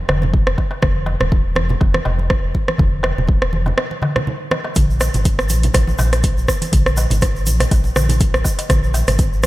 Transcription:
0.08 analog synth bass F1, cross-stick, high conga, darbuka tek, darbuka dum
0.22 muted conga, high conga, low conga
0.34 kick, low conga
0.47 analog synth bass F1, cross-stick
0.58 kick, muted conga, darbuka tek
0.71 darbuka ka, darbuka tek
0.82 analog synth bass F1, kick, cross-stick, muted conga, darbuka dum
1.06 darbuka ka, muted conga
1.20 analog synth bass D#1, cross-stick, low conga
1.32 kick, muted conga
1.56 analog synth bass F1, cross-stick, high conga
1.69 muted conga, low conga
1.81 analog synth bass F1, kick, high conga, darbuka tek, low conga
1.94 cross-stick, muted conga, high conga
2.05 analog synth bass F1, darbuka ka, darbuka tek, low conga
2.18 muted conga, high conga
2.30 kick, cross-stick
2.44 analog synth bass F1
2.55 kick, muted conga
2.68 cross-stick, high conga
2.78 analog synth bass F1, kick, muted conga, darbuka dum
3.03 cross-stick, darbuka ka, muted conga, darbuka tek
3.17 analog synth bass D#1, low conga
3.28 kick, muted conga
3.42 cross-stick
3.53 analog synth bass F1, high conga
3.66 darbuka ka, muted conga, low conga
3.78 cross-stick, darbuka tek
3.91 muted conga
4.02 high conga, darbuka tek, darbuka dum
4.16 cross-stick, muted conga, high conga, low conga
4.27 low conga
4.51 cross-stick, muted conga, high conga, darbuka tek
4.64 darbuka ka, darbuka tek
4.75 analog synth bass A#1, kick, closed hi-hat, muted conga, darbuka dum, shaker
4.90 shaker
5.00 cross-stick, closed hi-hat, muted conga, darbuka ka, shaker
5.14 analog synth bass G#1, closed hi-hat, low conga, shaker
5.25 kick, closed hi-hat, muted conga, shaker
5.39 cross-stick, shaker
5.49 analog synth bass A#1, closed hi-hat, high conga, shaker
5.63 closed hi-hat, muted conga, low conga, shaker
5.73 analog synth bass A#1, kick, cross-stick, closed hi-hat, high conga, darbuka tek, low conga, shaker
5.87 muted conga, high conga, shaker
5.99 analog synth bass A#1, darbuka ka, darbuka tek, low conga, shaker
6.13 cross-stick, closed hi-hat, muted conga, high conga, shaker
6.23 kick, closed hi-hat, shaker
6.37 analog synth bass A#1, shaker
6.48 kick, cross-stick, muted conga, shaker
6.62 closed hi-hat, high conga, shaker
6.72 analog synth bass A#1, kick, closed hi-hat, muted conga, darbuka dum, shaker
6.86 cross-stick, shaker
6.97 closed hi-hat, muted conga, darbuka ka, darbuka tek, shaker
7.10 analog synth bass G#1, closed hi-hat, low conga, shaker
7.22 kick, cross-stick, closed hi-hat, muted conga, shaker
7.36 shaker
7.46 analog synth bass A#1, closed hi-hat, high conga, shaker
7.60 cross-stick, closed hi-hat, darbuka ka, muted conga, low conga, shaker
7.71 analog synth bass A#1, kick, closed hi-hat, darbuka tek, shaker
7.84 muted conga, shaker
7.96 analog synth bass A#1, cross-stick, darbuka tek, high conga, darbuka dum, shaker
8.09 closed hi-hat, muted conga, high conga, low conga, shaker
8.20 kick, closed hi-hat, low conga, shaker
8.34 analog synth bass A#1, cross-stick, shaker
8.44 kick, muted conga, darbuka tek, shaker
8.59 closed hi-hat, darbuka ka, darbuka tek, shaker
8.69 analog synth bass A#1, kick, cross-stick, closed hi-hat, muted conga, darbuka dum, shaker
8.83 shaker
8.94 closed hi-hat, darbuka ka, muted conga, shaker
9.07 analog synth bass G#1, cross-stick, closed hi-hat, low conga, shaker
9.19 kick, closed hi-hat, muted conga, shaker
9.33 shaker
9.43 analog synth bass A#1, cross-stick, closed hi-hat, high conga, shaker

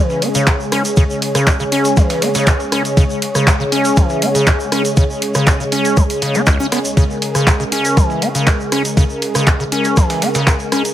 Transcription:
Already playing: analog synth pad C#3 G#3 G#4 C#5, acid bass E3
0.10 snare, shaker
0.22 acid bass C#4, open hi-hat, ride
0.35 acid bass C#3, closed hi-hat, shaker
0.47 acid bass B2, kick, snare, clap, closed hi-hat, ride, shaker
0.60 shaker
0.72 acid bass C#4, cross-stick, open hi-hat, ride
0.85 closed hi-hat, shaker
0.96 acid bass C#3, kick, closed hi-hat, ride, shaker
1.10 shaker
1.22 open hi-hat, ride
1.35 acid bass C#3, cross-stick, closed hi-hat, ride, shaker
1.47 acid bass B2, kick, snare, clap, closed hi-hat, ride, shaker
1.60 acid bass C#3, shaker
1.72 acid bass C#4, open hi-hat, ride
1.85 snare, closed hi-hat, shaker
1.97 acid bass E3, kick, cross-stick, snare, closed hi-hat, ride, shaker
2.10 snare, open hi-hat, ride, shaker
2.22 acid bass C#4, snare, open hi-hat, ride
2.35 acid bass C#3, snare, closed hi-hat, ride, shaker
2.47 acid bass B2, kick, snare, clap, closed hi-hat, ride, shaker
2.60 ride, shaker
2.72 acid bass C#4, cross-stick, open hi-hat, ride
2.85 closed hi-hat, shaker
2.97 acid bass C#3, kick, closed hi-hat, ride, shaker
3.10 shaker
3.22 open hi-hat, ride
3.35 acid bass C#3, cross-stick, closed hi-hat, shaker
3.47 acid bass B2, kick, snare, clap, closed hi-hat, ride, shaker
3.60 acid bass C#3, shaker
3.72 acid bass C#4, open hi-hat, ride
3.85 snare, closed hi-hat, shaker
3.96 acid bass E3, kick, cross-stick, closed hi-hat, ride, shaker
4.10 snare, shaker
4.22 acid bass C#4, open hi-hat, ride
4.35 acid bass C#3, closed hi-hat, shaker
4.47 acid bass B2, kick, snare, clap, closed hi-hat, ride, shaker
4.60 shaker
4.72 acid bass C#4, cross-stick, open hi-hat, ride
4.85 closed hi-hat, shaker
4.97 acid bass C#3, kick, closed hi-hat, ride, shaker
5.10 shaker
5.22 open hi-hat, ride
5.35 acid bass C#3, cross-stick, closed hi-hat, ride, shaker
5.47 acid bass B2, kick, snare, clap, closed hi-hat, ride, shaker
5.60 acid bass C#3, shaker
5.72 acid bass C#4, open hi-hat, ride
5.85 snare, closed hi-hat, shaker
5.97 acid bass E3, kick, cross-stick, closed hi-hat, shaker
6.10 open hi-hat, shaker
6.22 acid bass C#3, open hi-hat, ride
6.35 acid bass C#4, closed hi-hat, shaker
6.46 acid bass C#2, kick, clap, closed hi-hat, ride, shaker
6.60 acid bass C#4, shaker
6.72 acid bass B3, cross-stick, snare, open hi-hat, ride
6.85 closed hi-hat, shaker
6.97 acid bass C#3, analog synth pad A#4, kick, closed hi-hat, ride, shaker
7.10 shaker
7.22 open hi-hat, ride
7.35 acid bass C#3, cross-stick, closed hi-hat, shaker
7.47 acid bass B2, kick, snare, clap, closed hi-hat, ride, shaker
7.60 acid bass C#3, shaker
7.72 acid bass C#4, open hi-hat, ride
7.85 snare, closed hi-hat, shaker
7.97 acid bass E3, kick, cross-stick, closed hi-hat, ride, shaker
8.10 snare, shaker
8.22 acid bass C#4, open hi-hat, ride
8.35 acid bass C#3, closed hi-hat, shaker
8.47 acid bass B2, kick, snare, clap, closed hi-hat, ride, shaker
8.60 shaker
8.72 acid bass C#4, cross-stick, open hi-hat, ride
8.85 closed hi-hat, shaker
8.97 acid bass C#3, kick, closed hi-hat, ride, shaker
9.10 shaker
9.22 open hi-hat, ride
9.35 acid bass C#3, cross-stick, closed hi-hat, ride, shaker
9.47 acid bass B2, kick, snare, clap, closed hi-hat, ride, shaker
9.60 acid bass C#3, shaker
9.72 acid bass C#4, open hi-hat, ride
9.84 snare, closed hi-hat, shaker
9.97 acid bass E3, kick, cross-stick, snare, closed hi-hat, ride, shaker
10.10 snare, open hi-hat, ride, shaker
10.22 acid bass C#4, snare, open hi-hat, ride
10.35 acid bass C#3, snare, closed hi-hat, ride, shaker
10.47 acid bass B2, kick, snare, clap, closed hi-hat, ride, shaker
10.60 ride, shaker
10.72 acid bass C#4, cross-stick, open hi-hat, ride
10.85 closed hi-hat, shaker

